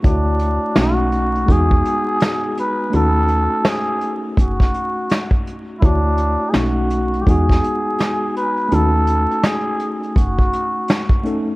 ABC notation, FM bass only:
X:1
M:4/4
L:1/16
Q:"Swing 16ths" 1/4=83
K:F#dor
V:1 name="FM bass" clef=bass
=D,,3 z B,,,4 E,,2 z6 | D,,3 z4 z F,,,2 z6 | =D,,3 z B,,,4 E,,2 z6 | D,,3 z4 z F,,,2 z6 |]